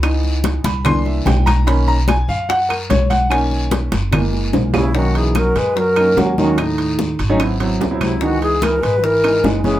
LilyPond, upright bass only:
\new Staff \with { instrumentName = "Upright bass" } { \clef bass \time 4/4 \key b \major \tempo 4 = 147 cis,4. c,4. b,,4~ | b,,4. fis,4. b,,4~ | b,,4. fis,,4. b,,4~ | b,,4. fis,4. dis,4~ |
dis,4. gis,,4. cis,4~ | cis,4. gis,,4. fis,,4 | }